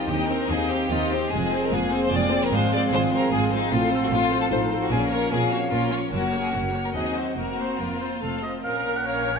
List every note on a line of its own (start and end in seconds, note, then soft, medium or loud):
0.00 1.28 D#3 soft
0.00 1.27 C4 soft
0.00 0.11 D#4 soft
0.08 0.43 D#2 medium
0.08 0.49 D4 soft
0.08 0.27 D#4 soft
0.08 0.28 G4 medium
0.08 0.27 G4 soft
0.08 0.28 D#5 soft
0.08 0.49 G5 soft
0.29 0.49 C4 soft
0.29 0.48 D#4 soft
0.29 0.49 A#4 medium
0.29 0.49 C5 soft
0.49 0.84 D#2 medium
0.49 1.30 C4 soft
0.49 0.69 D#4 soft
0.49 0.70 G4 soft
0.49 0.69 G#4 medium
0.49 0.70 D#5 soft
0.49 0.93 F5 soft
0.70 0.91 C4 soft
0.70 0.90 D#4 soft
0.70 0.91 G4 medium
0.70 0.90 C5 soft
0.91 1.25 D#2 medium
0.91 1.26 D#2 medium
0.91 1.10 D#4 soft
0.91 1.12 F4 medium
0.91 1.10 G4 soft
0.91 1.10 D#5 soft
0.91 1.74 D#5 soft
1.11 1.32 C4 soft
1.11 1.32 D#4 soft
1.11 1.32 G4 medium
1.11 1.31 C5 soft
1.31 1.66 F1 medium
1.31 1.66 F2 medium
1.31 3.68 F3 medium
1.31 1.51 G#3 soft
1.31 1.71 C4 medium
1.31 3.68 C4 medium
1.31 1.50 F4 medium
1.31 1.50 G#4 soft
1.31 1.62 G#4 medium
1.52 1.72 C4 soft
1.52 1.72 G#4 soft
1.52 1.72 C5 soft
1.62 1.72 A#4 medium
1.71 2.06 F1 medium
1.71 2.06 F2 medium
1.71 1.92 G#3 soft
1.71 2.50 A#3 medium
1.71 1.92 F4 soft
1.71 1.92 G#4 soft
1.71 2.03 G#4 medium
1.71 2.11 F5 soft
1.92 2.13 C4 soft
1.92 2.13 G#4 soft
1.92 2.12 C5 soft
2.04 2.13 C5 medium
2.12 2.46 F1 medium
2.12 2.45 F2 medium
2.12 2.31 G#3 soft
2.12 2.31 F4 soft
2.12 2.30 G#4 soft
2.12 2.43 D5 medium
2.12 2.51 G5 medium
2.31 2.52 C4 soft
2.31 2.52 G#4 soft
2.31 2.51 C5 soft
2.44 2.53 A#4 medium
2.51 2.86 G#1 medium
2.51 2.85 G#2 medium
2.51 2.94 G#3 medium
2.51 2.71 G#3 medium
2.51 2.71 F4 medium
2.51 2.70 G#4 medium
2.51 2.73 C5 medium
2.51 3.70 F5 medium
2.72 2.92 C4 soft
2.72 2.92 G#4 soft
2.72 2.92 C5 soft
2.72 2.81 D5 medium
2.91 3.26 G#1 medium
2.91 3.26 G#2 medium
2.91 3.13 G#3 soft
2.91 3.71 C4 medium
2.91 3.13 F4 soft
2.91 3.11 G#4 medium
2.91 3.01 C5 medium
3.11 3.33 C4 soft
3.11 3.33 G#4 soft
3.11 3.32 A#4 medium
3.11 3.31 C5 soft
3.31 3.66 G#1 medium
3.31 3.66 G#2 medium
3.31 3.51 G#3 soft
3.31 3.51 F4 medium
3.31 3.50 G#4 soft
3.31 3.41 G#4 medium
3.51 3.72 C4 soft
3.51 3.72 D#4 medium
3.51 3.72 G#4 soft
3.51 3.72 C5 soft
3.71 4.06 A1 medium
3.71 4.05 A2 medium
3.71 6.08 F3 medium
3.71 3.91 A3 medium
3.71 4.53 C4 medium
3.71 4.76 C4 medium
3.71 3.91 F4 medium
3.71 4.02 F4 medium
3.71 3.90 A4 medium
3.71 4.89 F5 medium
3.90 4.12 C4 soft
3.90 4.12 A4 soft
3.90 4.11 C5 soft
4.03 4.06 F#4 medium
4.11 4.45 A1 medium
4.11 4.45 A2 medium
4.11 4.32 A3 soft
4.11 4.41 F4 medium
4.11 4.32 F4 soft
4.11 4.31 A4 soft
4.31 4.52 C4 soft
4.31 4.52 A4 soft
4.31 4.51 C5 soft
4.42 4.46 A4 medium
4.51 4.85 A1 medium
4.51 4.85 A2 medium
4.51 4.70 A3 soft
4.51 4.94 D#4 soft
4.51 4.70 F4 soft
4.51 4.70 A4 soft
4.51 4.60 C5 medium
4.71 4.92 C4 soft
4.71 4.91 A4 soft
4.71 4.91 C5 soft
4.83 4.92 F#4 medium
4.90 5.25 A#1 medium
4.90 5.25 A#2 medium
4.90 5.10 C#4 soft
4.90 5.34 C#4 medium
4.90 6.11 C#4 medium
4.90 5.10 F4 soft
4.90 5.11 G#4 medium
4.90 5.10 A#4 soft
4.90 5.31 F5 soft
5.10 5.32 A#3 soft
5.10 5.31 C#4 soft
5.10 5.32 A#4 medium
5.10 5.31 C#5 soft
5.31 5.65 A#1 medium
5.31 5.65 A#2 medium
5.31 5.74 C4 soft
5.31 5.51 C#4 soft
5.31 5.51 F4 soft
5.31 5.52 G#4 medium
5.31 5.51 A#4 soft
5.31 5.84 F5 soft
5.52 5.72 A#3 soft
5.52 5.71 C#4 soft
5.52 5.60 F#4 medium
5.52 5.72 C#5 soft
5.71 6.06 A#1 medium
5.71 6.06 A#2 soft
5.71 6.01 A#3 soft
5.71 5.91 C#4 soft
5.71 5.90 F4 medium
5.71 5.90 F4 soft
5.71 5.90 A#4 soft
5.91 6.12 A#3 soft
5.91 6.12 C#4 soft
5.91 5.99 F4 medium
5.91 6.12 C#5 soft
6.11 6.47 F#1 medium
6.11 6.47 F#2 medium
6.11 6.51 F#3 soft
6.11 6.66 A#3 soft
6.11 6.51 A#3 soft
6.11 6.32 C#4 soft
6.11 6.42 F#4 medium
6.11 6.32 F#4 soft
6.11 6.31 A#4 soft
6.11 6.98 F#5 soft
6.33 6.53 A#3 soft
6.33 6.53 A#4 soft
6.33 6.54 C#5 soft
6.42 6.53 G#4 medium
6.53 6.88 F#1 soft
6.53 6.88 F#2 soft
6.53 6.93 F#3 soft
6.53 6.94 A#3 soft
6.53 6.74 C#4 soft
6.53 6.61 F#4 medium
6.53 6.74 F#4 soft
6.53 6.74 A#4 soft
6.74 6.95 A#3 soft
6.74 6.95 A#4 soft
6.74 6.95 C#5 soft
6.85 6.89 A#4 soft
6.94 7.30 D#2 soft
6.94 7.36 F#3 soft
6.94 7.36 C4 soft
6.94 7.34 C4 soft
6.94 7.14 D#4 soft
6.94 7.14 F#4 soft
6.94 7.15 G#4 soft
6.94 7.14 D#5 soft
6.94 7.38 D#5 soft
7.16 7.37 C4 soft
7.16 7.37 D#4 soft
7.16 7.35 F#4 soft
7.16 7.37 C5 soft
7.36 7.72 F1 soft
7.36 7.72 F2 soft
7.36 8.24 A#3 soft
7.36 7.57 A#3 soft
7.36 7.79 A#3 soft
7.36 7.78 C4 soft
7.36 7.78 F#4 soft
7.36 7.56 A#4 soft
7.36 7.57 A#4 soft
7.36 8.24 A#5 soft
7.57 7.79 C4 soft
7.57 7.79 C5 soft
7.57 7.80 C5 soft
7.78 8.15 F1 soft
7.78 8.15 F2 soft
7.78 8.01 A#3 soft
7.78 7.99 C4 soft
7.78 8.42 F4 soft
7.78 8.00 A#4 soft
7.78 8.01 A#4 soft
8.00 8.22 A#3 soft
8.00 8.21 C4 soft
8.00 8.21 C5 soft
8.21 8.57 F1 soft
8.21 8.57 F2 soft
8.21 8.41 A3 soft
8.21 8.43 C4 soft
8.21 8.32 C4 soft
8.21 8.41 A4 soft
8.21 8.41 F5 soft
8.21 8.43 A5 soft
8.42 8.53 A3 soft
8.42 8.64 C4 soft
8.42 8.63 F4 soft
8.42 8.64 C5 soft
8.42 8.52 D#5 soft
8.63 9.39 A#1 soft
8.63 9.39 A#2 soft
8.63 9.02 C#4 soft
8.63 9.02 A#4 soft
8.63 8.98 F5 medium
8.97 9.08 F#5 soft
9.05 9.39 C#4 soft
9.05 9.39 A#4 soft
9.05 9.39 C#5 soft
9.05 9.38 F5 medium